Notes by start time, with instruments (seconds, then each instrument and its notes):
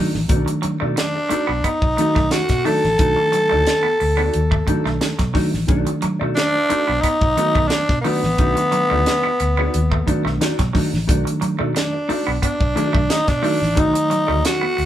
Already playing: reed electric piano D#3 F#3 A3 D4, clean electric guitar D#4 F#4 A4 D#5
0.12 fingered electric bass A1, muted clean electric guitar stroke, snare
0.28 fingered electric bass B1, reed electric piano D#3 F#3 A3 B3, clean electric guitar D#4 F#4 A4 D5, kick, closed hi-hat
0.37 reed electric piano D4
0.46 muted clean electric guitar stroke, closed hi-hat
0.62 clean electric guitar F#3, muted clean electric guitar stroke, muted fingered electric bass stroke, closed hi-hat
0.80 fingered electric bass B2, clean electric guitar A3 D#4 F#4 A4 D5
0.96 tenor saxophone D4, muted clean electric guitar stroke, snare, closed hi-hat
1.15 muted clean electric guitar stroke
1.29 clean electric guitar A3 D#4 F#4 A4 D5, muted fingered electric bass stroke, closed hi-hat
1.47 fingered electric bass B1, clean electric guitar B3, muted clean electric guitar stroke
1.64 clean electric guitar B3, tenor saxophone D#4, muted fingered electric bass stroke, muted clean electric guitar stroke, kick, closed hi-hat
1.82 fingered electric bass B1, muted clean electric guitar stroke, kick
1.97 reed electric piano D#3 F#3 A3 D#4, clean electric guitar D#4 F#4 A4 D#5, muted clean electric guitar stroke, closed hi-hat
2.15 fingered electric bass B1, clean electric guitar A3, kick, snare
2.31 tenor saxophone F#4, muted clean electric guitar stroke, snare, closed hi-hat
2.49 fingered electric bass B2, muted clean electric guitar stroke, kick, snare, closed hi-hat
2.65 reed electric piano D#3 F#3 A3 D4, clean electric guitar A3 D#4 F#4 A4 D5, tenor saxophone A4, open hi-hat
2.84 fingered electric bass A1, muted clean electric guitar stroke, snare
2.98 fingered electric bass B1, reed electric piano D#3 F#3 A3 D4, clean electric guitar D#4 F#4 A4 D#5, kick, closed hi-hat
3.17 muted clean electric guitar stroke
3.32 clean electric guitar F#3, muted clean electric guitar stroke, closed hi-hat
3.49 fingered electric bass D2, clean electric guitar A3 D#4 F#4 A4 D5
3.66 muted clean electric guitar stroke, snare, closed hi-hat
3.83 clean electric guitar B3, muted clean electric guitar stroke
4.00 fingered electric bass D2, muted clean electric guitar stroke, open hi-hat
4.17 clean electric guitar B3 D#4 F#4 A4 D5
4.34 fingered electric bass D#2, closed hi-hat
4.51 clean electric guitar A3, muted clean electric guitar stroke, kick
4.66 reed electric piano D#3 F#3 A3 D4, clean electric guitar D#4 F#4 A4 D5, muted clean electric guitar stroke, kick, closed hi-hat
4.85 fingered electric bass B1, clean electric guitar A3, muted clean electric guitar stroke, snare
5.01 muted clean electric guitar stroke, snare, closed hi-hat
5.19 fingered electric bass B2, clean electric guitar F#3, kick, snare, closed hi-hat
5.34 reed electric piano D#3 F#3 A3 D4, clean electric guitar F#3 D#4 F#4 A4 D#5, kick, snare, open hi-hat
5.52 fingered electric bass A1, muted clean electric guitar stroke, snare
5.67 fingered electric bass B1, reed electric piano D#3 F#3 A3 C#4, clean electric guitar D#4 F#4 A4 D5, kick, closed hi-hat
5.75 reed electric piano D4
5.87 muted clean electric guitar stroke, closed hi-hat
6.02 clean electric guitar F#3, muted clean electric guitar stroke, muted fingered electric bass stroke, closed hi-hat
6.20 fingered electric bass B2, clean electric guitar A3 D#4 F#4 A4 D5
6.35 tenor saxophone D4, muted clean electric guitar stroke, snare, closed hi-hat
6.54 muted clean electric guitar stroke
6.69 clean electric guitar A3 D#4 F#4 A4 D5, muted fingered electric bass stroke, closed hi-hat
6.88 fingered electric bass B1, clean electric guitar B3, muted clean electric guitar stroke
7.01 clean electric guitar B3, tenor saxophone D#4, muted clean electric guitar stroke, kick, closed hi-hat
7.21 fingered electric bass B1, muted clean electric guitar stroke, kick
7.36 reed electric piano D#3 F#3 A3 B3, clean electric guitar D#4 F#4 A4 D#5, muted clean electric guitar stroke, closed hi-hat
7.55 fingered electric bass B1, clean electric guitar A3, muted clean electric guitar stroke, kick
7.68 tenor saxophone D4, muted clean electric guitar stroke, snare, closed hi-hat
7.89 fingered electric bass B2, muted clean electric guitar stroke, kick, snare
8.01 reed electric piano D#3 F#3, clean electric guitar A3 D#4 F#4, tenor saxophone B3, open hi-hat
8.06 reed electric piano A3 D4, clean electric guitar A4 D5
8.22 fingered electric bass A1, muted clean electric guitar stroke, snare
8.38 fingered electric bass B1, reed electric piano D#3 F#3 A3 C#4, clean electric guitar D#4 F#4 A4 D#5, kick, closed hi-hat
8.46 reed electric piano D4
8.57 muted clean electric guitar stroke, closed hi-hat
8.72 clean electric guitar F#3, muted clean electric guitar stroke, closed hi-hat
8.90 fingered electric bass D2, clean electric guitar A3 D#4 F#4 A4 D5
9.06 muted clean electric guitar stroke, snare, closed hi-hat
9.24 clean electric guitar B3, muted clean electric guitar stroke
9.40 fingered electric bass D2, muted clean electric guitar stroke, closed hi-hat
9.57 clean electric guitar B3 D#4 F#4 A4 D5
9.74 fingered electric bass D#2, closed hi-hat
9.91 clean electric guitar A3, muted clean electric guitar stroke, kick
10.06 reed electric piano D#3 F#3 A3 D4, clean electric guitar D#4 F#4 A4 D5, muted clean electric guitar stroke, kick, closed hi-hat
10.25 fingered electric bass B1, clean electric guitar A3, muted clean electric guitar stroke, snare
10.41 clean electric guitar D#4 F#4 A4 D5, muted clean electric guitar stroke, snare, closed hi-hat
10.59 fingered electric bass B2, clean electric guitar F#3, muted clean electric guitar stroke, kick, snare, closed hi-hat
10.73 reed electric piano D#3 F#3 A3 D4, clean electric guitar F#3 D#4 F#4 A4 D#5, kick, snare, open hi-hat
10.92 fingered electric bass A1, muted clean electric guitar stroke, snare
11.08 fingered electric bass B1, reed electric piano D#3 F#3 A3 D4, clean electric guitar D#4 F#4 A4 D5, kick, closed hi-hat
11.25 muted clean electric guitar stroke, closed hi-hat
11.41 clean electric guitar F#3, muted clean electric guitar stroke, muted fingered electric bass stroke, closed hi-hat
11.59 fingered electric bass B2, clean electric guitar A3 D#4 F#4 A4 D5
11.75 tenor saxophone D4, muted clean electric guitar stroke, snare, closed hi-hat
11.93 muted clean electric guitar stroke
12.09 clean electric guitar A3 D#4 F#4 A4 D5, muted fingered electric bass stroke, open hi-hat
12.26 fingered electric bass B1, clean electric guitar B3, muted clean electric guitar stroke
12.42 clean electric guitar B3, tenor saxophone D4, muted clean electric guitar stroke, kick, closed hi-hat
12.59 fingered electric bass B1, muted clean electric guitar stroke, kick
12.76 reed electric piano D#3 F#3 A3 D4, clean electric guitar D#4 F#4 A4 D#5, muted clean electric guitar stroke, closed hi-hat
12.93 fingered electric bass B1, clean electric guitar A3, muted clean electric guitar stroke, kick
13.09 tenor saxophone D#4, muted clean electric guitar stroke, snare, closed hi-hat
13.27 fingered electric bass B2, tenor saxophone D4, muted clean electric guitar stroke, kick, snare, closed hi-hat
13.42 reed electric piano D#3 F#3 A3 D#4, clean electric guitar A3 D#4 F#4 A4 D5, open hi-hat
13.61 fingered electric bass A1, muted clean electric guitar stroke, snare
13.75 fingered electric bass B1, reed electric piano D#3 F#3 A3 D#4, clean electric guitar D#4 F#4 A4 D#5, kick, closed hi-hat
13.80 tenor saxophone D#4
13.94 muted clean electric guitar stroke, closed hi-hat
14.10 clean electric guitar F#3, muted clean electric guitar stroke, closed hi-hat
14.27 fingered electric bass D2, clean electric guitar A3 D#4 F#4 A4 D5
14.45 tenor saxophone F#4, snare, closed hi-hat
14.61 clean electric guitar B3, muted clean electric guitar stroke
14.77 fingered electric bass D2, muted clean electric guitar stroke, open hi-hat